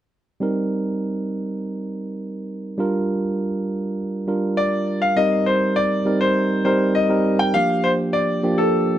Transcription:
0.40 tine electric piano G3 C4 D#4 A#4
2.78 tine electric piano G3 D4 F4 A#4
4.27 tine electric piano G3 D4 F4 A#4
4.57 grand piano D5
5.02 grand piano F5
5.16 tine electric piano G3 C4 D#4 A#4, grand piano D#5
5.46 grand piano C5
5.76 grand piano D5
6.05 tine electric piano G3 C4 D#4 A#4
6.21 grand piano C5
6.65 tine electric piano G3 C4 D#4 A#4, grand piano C5
6.95 grand piano D#5
7.09 tine electric piano G3 C4 D#4 A#4
7.39 grand piano G5
7.54 tine electric piano F3 A#3 D4 G4, grand piano F5
7.84 grand piano C5
8.13 grand piano D5
8.43 tine electric piano F3 A#3 D4 G4
8.58 grand piano A4

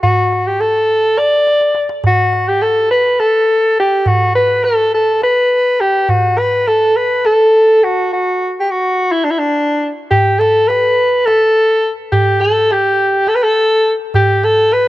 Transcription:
0.03 soprano saxophone F#4, darbuka dum
0.32 darbuka tek
0.47 soprano saxophone G4
0.60 soprano saxophone A4, darbuka tek
0.90 darbuka ka
1.18 soprano saxophone D5, darbuka tek
1.47 darbuka tek
1.61 darbuka ka
1.75 darbuka tek
1.90 darbuka ka
2.04 soprano saxophone F#4, darbuka dum
2.33 darbuka tek
2.48 soprano saxophone G4
2.62 soprano saxophone A4, darbuka tek
2.91 soprano saxophone B4
3.20 soprano saxophone A4, darbuka tek
3.77 soprano saxophone G4, darbuka ka
4.06 soprano saxophone F#4, darbuka dum
4.35 soprano saxophone B4
4.64 soprano saxophone A4, darbuka tek
4.94 soprano saxophone A4
5.22 soprano saxophone B4, darbuka tek
5.80 soprano saxophone G4, darbuka ka
6.09 soprano saxophone F#4, darbuka dum
6.38 soprano saxophone B4, darbuka tek
6.68 soprano saxophone A4, darbuka tek
6.96 soprano saxophone B4
7.25 soprano saxophone A4, darbuka tek
7.81 soprano saxophone F#4, darbuka ka
8.13 soprano saxophone F#4
8.60 soprano saxophone G4
8.71 soprano saxophone F#4
9.12 soprano saxophone E4
9.24 soprano saxophone D4
9.31 soprano saxophone E4
9.38 soprano saxophone D4
10.11 soprano saxophone G4, darbuka dum
10.39 soprano saxophone A4, darbuka tek
10.68 soprano saxophone B4, darbuka tek
10.99 darbuka ka
11.26 soprano saxophone A4, darbuka tek
12.12 soprano saxophone G4, darbuka dum
12.41 soprano saxophone A4, darbuka tek
12.71 soprano saxophone G4, darbuka tek
13.27 soprano saxophone A4, darbuka tek
13.35 soprano saxophone B4
13.43 soprano saxophone A4
14.14 soprano saxophone G4, darbuka dum
14.43 soprano saxophone A4, darbuka tek
14.72 soprano saxophone B4, darbuka tek

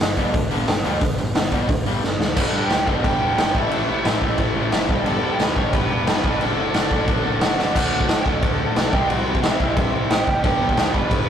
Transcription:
0.00 picked electric bass G1, distorted electric guitar G2 D3, snare, open hi-hat
0.17 picked electric bass G1, distorted electric guitar G2 D3 G3, kick, open hi-hat
0.33 picked electric bass D2, distorted electric guitar G2 D3, kick, open hi-hat
0.50 picked electric bass G1, distorted electric guitar G2 D3 G3, open hi-hat
0.67 picked electric bass G1, distorted electric guitar G2 D3, snare, open hi-hat
0.83 picked electric bass D2, distorted electric guitar G2 D3 G3, open hi-hat
1.00 picked electric bass G1, distorted electric guitar G2 D3, kick, open hi-hat
1.17 picked electric bass G1, distorted electric guitar G2 D3, open hi-hat
1.35 picked electric bass G1, distorted electric guitar G2 D3, snare, open hi-hat
1.51 picked electric bass G1, distorted electric guitar G2 D3 G3, kick, open hi-hat
1.68 picked electric bass D2, distorted electric guitar G2 D3, kick, open hi-hat
1.85 picked electric bass G1, distorted electric guitar G2 D3 G3, open hi-hat
2.02 picked electric bass G1, distorted electric guitar G2 D3, snare
2.19 picked electric bass D2, distorted electric guitar G2 D3, snare
2.36 picked electric bass G1, distorted electric guitar G2 D3 G3, overdriven electric guitar B3 D4, lead electric guitar A4 A5, kick, crash
2.52 picked electric bass G2, distorted electric guitar G2 D3 G3
2.62 lead electric guitar G4 G5
2.69 picked electric bass D2, distorted electric guitar G2 D3 G3, snare, crash
2.86 picked electric bass G1, distorted electric guitar G2 D3 G3, overdriven electric guitar B3 D4, lead electric guitar A4 A5, kick
3.03 picked electric bass G1, distorted electric guitar G2 D3 G3, lead electric guitar G4 G5, kick, crash
3.19 picked electric bass E1, distorted electric guitar G2 D3 G3
3.36 picked electric bass G1, distorted electric guitar G2 D3 G3, lead electric guitar G4 G5, snare, crash
3.40 overdriven electric guitar B3 D4
3.53 picked electric bass A1, distorted electric guitar A2 E3 A3, overdriven electric guitar C#4, lead electric guitar E4 E5, kick
3.57 overdriven electric guitar E4
3.70 picked electric bass A1, distorted electric guitar A2 E3 A3, crash
3.87 picked electric bass A1, distorted electric guitar A2 E3 A3
4.03 picked electric bass A1, distorted electric guitar A2 E3 A3, snare, crash
4.07 overdriven electric guitar C#4 E4
4.20 picked electric bass A1, distorted electric guitar A2 E3 A3, kick
4.38 picked electric bass A1, distorted electric guitar A2 E3 A3, kick, crash
4.54 picked electric bass A1, distorted electric guitar A2 E3 A3, overdriven electric guitar C#4 E4
4.71 picked electric bass F#1, distorted electric guitar A2 E3 A3, snare, crash
4.87 picked electric bass G1, distorted electric guitar G2 D3 G3, overdriven electric guitar B3 D4 G4, kick
5.04 picked electric bass G1, distorted electric guitar G2 D3 G3, lead electric guitar A4 A5, crash
5.22 distorted electric guitar G2 D3 G3, picked electric bass G2
5.32 lead electric guitar G4 G5
5.38 picked electric bass D2, distorted electric guitar G2 D3 G3, overdriven electric guitar B3 D4 G4, lead electric guitar B4 B5, snare, crash
5.56 picked electric bass G1, distorted electric guitar G2 D3 G3, lead electric guitar C#5 C#6, kick
5.72 picked electric bass G1, distorted electric guitar G2 D3 G3, lead electric guitar B4 B5, kick, crash
5.90 picked electric bass E1, distorted electric guitar G2 D3 G3, overdriven electric guitar B3 D4 G4
6.06 picked electric bass F1, distorted electric guitar G2 D3 G3, lead electric guitar B4 B5, snare, crash
6.23 picked electric bass F#1, distorted electric guitar D3 A3 D4, overdriven electric guitar F#3 F#4, kick
6.41 picked electric bass F#1, distorted electric guitar D3 A3 D4, lead electric guitar A4 A5, crash
6.58 picked electric bass F#1, distorted electric guitar D3 A3 D4
6.74 picked electric bass F#1, distorted electric guitar D3 A3 D4, overdriven electric guitar F#3 F#4, snare, crash
6.91 picked electric bass F#1, distorted electric guitar D3 A3 D4, kick
7.08 picked electric bass F#1, distorted electric guitar D3 A3 D4, kick, crash
7.24 picked electric bass F#1, distorted electric guitar D3 A3 D4, overdriven electric guitar F#3 F#4
7.41 picked electric bass F#1, distorted electric guitar D3 A3 D4, lead electric guitar F#4 F#5, snare, crash
7.59 picked electric bass F#1, distorted electric guitar D3 A3 D4, snare
7.75 picked electric bass D2, distorted electric guitar D3 A3 D4, overdriven electric guitar F#3, lead electric guitar F#4 F#5, kick, crash
7.92 picked electric bass D2
8.01 kick
8.09 picked electric bass A2, snare, crash
8.19 lead electric guitar G5
8.25 picked electric bass D2, distorted electric guitar D3 A3 D4, lead electric guitar A4 A5, kick
8.42 picked electric bass D2, kick, crash
8.76 picked electric bass B1, snare, crash
8.92 picked electric bass C2, distorted electric guitar C3 G3 C4, overdriven electric guitar E4, lead electric guitar G4 G5, kick
9.09 picked electric bass C2, lead electric guitar F#4 F#5, crash
9.35 kick
9.42 distorted electric guitar C3 G3 C4, picked electric bass C3, lead electric guitar E4 E5, snare, crash
9.60 picked electric bass C2, kick
9.77 picked electric bass G2, kick, crash
9.93 picked electric bass C2
10.10 picked electric bass A1, overdriven electric guitar C3 G3 C4 E4, lead electric guitar G4 G5, snare, crash
10.27 picked electric bass F#1, kick
10.43 picked electric bass G1, distorted electric guitar G2 D3 G3, overdriven electric guitar B3 D4, lead electric guitar G4 G5, kick, crash
10.60 picked electric bass G1
10.69 kick
10.77 picked electric bass D2, snare, crash
10.94 picked electric bass G1, distorted electric guitar G2 D3 G3, lead electric guitar B4 B5, kick
11.11 picked electric bass G1, kick, crash

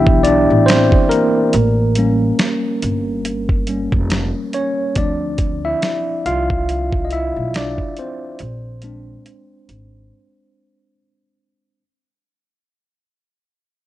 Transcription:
Already playing: upright bass B1, tine electric piano E3 B3 D4 E4 G4 D5 E5 G5
0.07 kick
0.23 tine electric piano D4 D5, closed hi-hat
0.50 upright bass A1
0.66 tine electric piano C4 C5, snare, closed hi-hat
0.92 kick
1.09 tine electric piano A#3 A#4, closed hi-hat
1.53 upright bass A1, closed hi-hat
1.95 tine electric piano G3 A#3 C#4, closed hi-hat
2.39 snare, closed hi-hat
2.82 upright bass G1, closed hi-hat
3.25 closed hi-hat
3.49 kick
3.67 tine electric piano G3 A#3 C#4, closed hi-hat
3.92 upright bass F1, kick
4.10 snare, closed hi-hat
4.53 tine electric piano C#4 C#5, closed hi-hat
4.95 upright bass D2, tine electric piano F3 C4 D4 D5, kick, closed hi-hat
5.38 kick, closed hi-hat
5.65 tine electric piano E4 E5
5.82 snare, closed hi-hat
6.26 upright bass C2, tine electric piano F4 F5, closed hi-hat
6.50 kick
6.69 closed hi-hat
6.93 kick
7.05 tine electric piano D#5
7.11 tine electric piano E4 E5, closed hi-hat
7.36 upright bass B1
7.54 tine electric piano D4 D5, snare, closed hi-hat
7.78 kick
7.97 tine electric piano C4 C5, closed hi-hat
8.39 upright bass A#1, closed hi-hat
8.82 tine electric piano G#3 C4 D4, closed hi-hat
9.26 closed hi-hat
9.69 upright bass G#1, closed hi-hat

